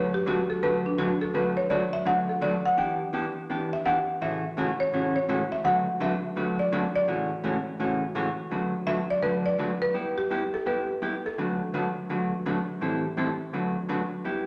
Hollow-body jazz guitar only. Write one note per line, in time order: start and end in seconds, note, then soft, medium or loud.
0.00 0.13 D3 medium
0.00 0.13 F#3 medium
0.00 0.13 A3 medium
0.00 0.13 D4 medium
0.00 0.13 F#4 medium
0.00 0.14 B4 medium
0.26 0.38 D3 medium
0.26 0.38 F#3 medium
0.26 0.38 A3 medium
0.26 0.39 D4 medium
0.26 0.39 F#4 medium
0.26 0.39 B4 medium
0.62 0.85 D3 medium
0.62 0.85 F#3 medium
0.62 0.85 A3 medium
0.62 0.85 D4 medium
0.62 0.85 F#4 medium
0.62 0.85 B4 medium
0.98 1.10 D3 medium
0.98 1.10 F#3 medium
0.98 1.10 A3 medium
0.98 1.10 D4 medium
0.98 1.10 F#4 medium
0.98 1.10 B4 medium
1.34 1.56 D3 medium
1.34 1.56 F#3 medium
1.34 1.56 A3 medium
1.34 1.57 D4 medium
1.34 1.57 F#4 medium
1.34 1.57 B4 medium
1.70 1.82 D3 medium
1.70 1.82 F#3 medium
1.70 1.82 A3 medium
1.70 1.82 D4 medium
1.70 1.82 F#4 medium
1.70 1.82 B4 medium
2.05 2.28 D3 medium
2.05 2.28 F#3 medium
2.05 2.28 A3 medium
2.05 2.28 D4 medium
2.05 2.28 F#4 medium
2.05 2.28 B4 medium
2.41 2.53 D3 medium
2.41 2.53 F#3 medium
2.41 2.53 A3 medium
2.41 2.53 D4 medium
2.41 2.54 F#4 medium
2.41 2.54 B4 medium
2.77 2.99 E3 medium
2.77 3.00 B3 medium
2.77 3.00 D4 medium
2.77 3.00 G4 medium
3.13 3.25 E3 medium
3.13 3.25 B3 medium
3.13 3.25 D4 medium
3.13 3.25 G4 medium
3.50 3.72 E3 medium
3.50 3.72 B3 medium
3.50 3.72 D4 medium
3.50 3.72 G4 medium
3.85 3.97 E3 medium
3.85 3.97 B3 medium
3.85 3.97 D4 medium
3.85 3.97 G4 medium
4.21 4.43 A2 medium
4.21 4.43 C#3 medium
4.21 4.43 E3 medium
4.21 4.44 A3 medium
4.21 4.44 C#4 medium
4.21 4.44 F#4 medium
4.57 4.69 A2 medium
4.57 4.69 C#3 medium
4.57 4.69 E3 medium
4.57 4.69 A3 medium
4.57 4.69 C#4 medium
4.57 4.69 F#4 medium
4.93 5.15 A2 medium
4.93 5.15 C#3 medium
4.93 5.15 E3 medium
4.93 5.15 A3 medium
4.93 5.15 C#4 medium
4.93 5.16 F#4 medium
5.28 5.40 A2 medium
5.28 5.40 C#3 medium
5.28 5.41 E3 medium
5.28 5.41 A3 medium
5.28 5.41 C#4 medium
5.28 5.41 F#4 medium
5.64 5.86 D3 medium
5.64 5.86 F#3 medium
5.64 5.87 A3 medium
5.64 5.87 D4 medium
5.64 5.87 F#4 medium
5.64 5.87 B4 medium
6.00 6.12 D3 medium
6.00 6.12 F#3 medium
6.00 6.12 A3 medium
6.00 6.12 D4 medium
6.00 6.12 F#4 medium
6.00 6.12 B4 medium
6.36 6.58 D3 medium
6.36 6.58 F#3 medium
6.36 6.58 A3 medium
6.36 6.59 D4 medium
6.36 6.59 F#4 medium
6.36 6.59 B4 medium
6.72 6.84 D3 medium
6.72 6.84 F#3 medium
6.72 6.84 A3 medium
6.72 6.84 D4 medium
6.72 6.84 F#4 medium
6.72 6.84 B4 medium
7.07 7.30 A2 medium
7.07 7.30 C#3 medium
7.07 7.30 E3 medium
7.07 7.30 A3 medium
7.07 7.30 C#4 medium
7.07 7.30 F#4 medium
7.43 7.55 A2 medium
7.43 7.55 C#3 medium
7.43 7.55 E3 medium
7.43 7.55 A3 medium
7.43 7.56 C#4 medium
7.43 7.56 F#4 medium
7.79 8.02 A2 medium
7.79 8.02 C#3 medium
7.79 8.02 E3 medium
7.79 8.02 A3 medium
7.79 8.02 C#4 medium
7.79 8.02 F#4 medium
8.15 8.27 A2 medium
8.15 8.27 C#3 medium
8.15 8.27 E3 medium
8.15 8.27 A3 medium
8.15 8.27 C#4 medium
8.15 8.27 F#4 medium
8.51 8.73 D3 medium
8.51 8.73 F#3 medium
8.51 8.73 A3 medium
8.51 8.74 D4 medium
8.51 8.74 F#4 medium
8.51 8.74 B4 medium
8.86 8.98 D3 medium
8.86 8.99 F#3 medium
8.86 8.99 A3 medium
8.86 8.99 D4 medium
8.86 8.99 F#4 medium
8.86 8.99 B4 medium
9.22 9.45 D3 medium
9.22 9.45 F#3 medium
9.22 9.45 A3 medium
9.22 9.45 D4 medium
9.22 9.45 F#4 medium
9.22 9.45 B4 medium
9.58 9.70 D3 medium
9.58 9.70 F#3 medium
9.58 9.71 A3 medium
9.58 9.71 D4 medium
9.58 9.71 F#4 medium
9.58 9.71 B4 medium
9.94 10.16 G3 medium
9.94 10.17 B3 medium
9.94 10.17 E4 medium
9.94 10.17 G4 medium
10.30 10.42 G3 medium
10.30 10.42 B3 medium
10.30 10.43 E4 medium
10.30 10.43 G4 medium
10.66 10.88 G3 medium
10.66 10.88 B3 medium
10.66 10.89 E4 medium
10.66 10.89 G4 medium
11.02 11.14 G3 medium
11.02 11.14 B3 medium
11.02 11.14 E4 medium
11.02 11.14 G4 medium
11.38 11.60 D3 medium
11.38 11.60 F#3 medium
11.38 11.61 A3 medium
11.38 11.60 D4 medium
11.38 11.61 F#4 medium
11.38 11.61 B4 medium
11.74 11.86 D3 medium
11.74 11.86 F#3 medium
11.74 11.86 A3 medium
11.74 11.86 D4 medium
11.74 11.86 F#4 medium
11.74 11.86 B4 medium
12.09 12.32 D3 medium
12.09 12.32 F#3 medium
12.09 12.32 A3 medium
12.09 12.32 D4 medium
12.09 12.32 F#4 medium
12.09 12.32 B4 medium
12.46 12.57 D3 medium
12.46 12.58 F#3 medium
12.46 12.58 A3 medium
12.46 12.58 D4 medium
12.46 12.58 F#4 medium
12.46 12.58 B4 medium
12.81 13.03 A2 medium
12.81 13.04 E3 medium
12.81 13.04 G3 medium
12.81 13.04 C4 medium
12.81 13.04 E4 medium
12.81 13.04 A4 medium
13.17 13.29 A2 medium
13.17 13.29 E3 medium
13.17 13.29 G3 medium
13.17 13.29 C4 medium
13.17 13.29 E4 medium
13.17 13.29 A4 medium
13.53 13.75 D3 medium
13.53 13.75 F#3 medium
13.53 13.76 A3 medium
13.53 13.76 D4 medium
13.53 13.76 F#4 medium
13.53 13.76 B4 medium
13.89 14.01 D3 medium
13.89 14.01 F#3 medium
13.89 14.01 A3 medium
13.89 14.01 D4 medium
13.89 14.01 F#4 medium
13.89 14.01 B4 medium
14.24 14.46 G3 medium
14.24 14.46 B3 medium
14.24 14.46 E4 medium
14.24 14.46 G4 medium